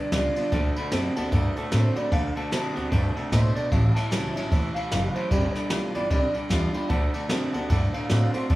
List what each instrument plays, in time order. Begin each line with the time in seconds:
Already playing: clean electric guitar G2 D3 B4 D5, steel-string acoustic guitar D3
0.12 upright bass C#2, clean electric guitar G2 D3 D5, steel-string acoustic guitar G3 B3 F4, kick, snare, ride
0.36 clean electric guitar G2 D3, steel-string acoustic guitar B3 F4, muted upright bass stroke, ride
0.52 upright bass D2, steel-string acoustic guitar D3, clean electric guitar D3 A3, upright piano D5 F#5 A5, kick, ride
0.76 clean electric guitar D3 A3, upright piano D5 F#5 B5, muted upright bass stroke, ride
0.91 upright bass F#2, steel-string acoustic guitar D3 A3 C4 F#4, clean electric guitar D3 B3, upright piano D5 F#5 A5, snare, ride
1.16 upright bass D2, clean electric guitar D3 B3, steel-string acoustic guitar C4 F#4, upright piano D5 F#5 A5, ride
1.32 upright bass G2, steel-string acoustic guitar A2, clean electric guitar D3 A3, upright piano D5 F#5 A5, kick, ride
1.56 clean electric guitar D3 A3, upright piano D5 F#5 A5, muted upright bass stroke, ride
1.71 upright bass A2, steel-string acoustic guitar D3 A3 C4 F#4, clean electric guitar D3 A3 C5, upright piano D5 A5, snare, ride
1.96 clean electric guitar D3 A3 D5, steel-string acoustic guitar C4 F#4, upright piano D5 F#5 B5, muted upright bass stroke, ride
2.12 upright bass D2, clean electric guitar D3 A3 F5, steel-string acoustic guitar D3, upright piano D5 F#5 A5, kick, ride
2.36 clean electric guitar D3 A3 A5, upright piano D5 F#5 A5, muted upright bass stroke, ride
2.51 upright bass F#2, steel-string acoustic guitar D3 A3 C4 F#4, clean electric guitar D3 B3 A5, upright piano D5 F#5 A5, snare, ride
2.75 upright bass D2, clean electric guitar D3 B3, steel-string acoustic guitar C4 F#4, upright piano D5 F#5 A5, ride
2.91 upright bass G2, steel-string acoustic guitar C3, clean electric guitar D3 A3, upright piano D5 F#5 A5, kick, ride
3.15 clean electric guitar D3 A3, upright piano D5 F#5 A5, muted upright bass stroke, ride
3.32 upright bass A2, steel-string acoustic guitar B2, clean electric guitar D3 A3 C5, upright piano D5 F#5 A5, kick, snare, ride
3.55 clean electric guitar D3 A3 D5, upright piano D5 F#5 A5, muted upright bass stroke, ride
3.72 upright bass A1, clean electric guitar A2 E3 F5, steel-string acoustic guitar A2, upright piano C#5 E5 A5, kick, ride
3.95 clean electric guitar A2 E3 A5, upright piano C#5 E5 A5, muted upright bass stroke, snare, ride
4.11 upright bass C#2, clean electric guitar A2 F#3 A5, steel-string acoustic guitar E3 G3 C#4 E4, upright piano C#5 E5 A5, snare, ride
4.36 upright bass A1, clean electric guitar A2 F#3, steel-string acoustic guitar C#4 E4, upright piano C#5 E5 A5, ride
4.51 upright bass D2, clean electric guitar A2 E3, steel-string acoustic guitar E3, upright piano C#5 E5 A5, kick, ride
4.74 clean electric guitar A2 E3 F5, upright piano C#5 E5 A5, muted upright bass stroke, ride
4.91 upright bass F#1, clean electric guitar A2 E3 F5, steel-string acoustic guitar F#3, upright piano C#5 E5 A5, snare, ride
5.14 clean electric guitar A2 E3 C5, upright piano C#5 E5 A5, muted upright bass stroke, ride
5.31 upright bass G1, clean electric guitar G2 D3 D5, steel-string acoustic guitar G3, upright piano D5 G5 B5, kick, ride
5.55 clean electric guitar G2 D3 A4, upright piano D5 G5 B5, muted upright bass stroke, snare, ride
5.70 upright bass B1, clean electric guitar G2 E3, steel-string acoustic guitar G3 B3 F4, upright piano D5 G5 B5, snare, ride
5.95 upright bass G1, clean electric guitar G2 E3 D5, steel-string acoustic guitar B3 F4, upright piano D5 G5 B5, ride
6.10 upright bass C2, clean electric guitar G2 D3 D5, steel-string acoustic guitar D3, upright piano D5 G5 B5, kick, ride
6.34 clean electric guitar G2 D3, upright piano D5 G5 B5, muted upright bass stroke, ride
6.49 upright bass E2, clean electric guitar G2 D3, steel-string acoustic guitar G3 B3 F4, upright piano D5 G5 B5, kick, snare, ride
6.73 clean electric guitar G2 D3, steel-string acoustic guitar B3 F4, upright piano D5 G5 B5, muted upright bass stroke, ride
6.89 upright bass D2, steel-string acoustic guitar D3, clean electric guitar D3 A3, upright piano D5 F#5 A5, kick, ride
7.13 clean electric guitar D3 A3, upright piano D5 F#5 A5, muted upright bass stroke, ride
7.29 upright bass F#2, steel-string acoustic guitar D3 A3 C4 F#4, clean electric guitar D3 B3, upright piano D5 F#5 A5, snare, ride
7.53 upright bass D2, clean electric guitar D3 B3, steel-string acoustic guitar C4 F#4, upright piano D5 F#5 A5, ride
7.70 upright bass G2, steel-string acoustic guitar A2, clean electric guitar D3 A3, upright piano D5 F#5 A5, kick, ride
7.93 clean electric guitar D3 A3 F5, upright piano D5 F#5 A5, muted upright bass stroke, ride
8.09 upright bass A2, steel-string acoustic guitar D3 A3 C4 F#4, clean electric guitar D3 A3 F5, upright piano D5 F#5 A5, snare, ride
8.33 clean electric guitar D3 A3 C5, steel-string acoustic guitar C4 F#4, upright piano D5 F#5 C6, muted upright bass stroke, ride
8.49 upright bass D2, steel-string acoustic guitar D3, clean electric guitar D3 A3 D5, upright piano D5 F#5 A5, kick, ride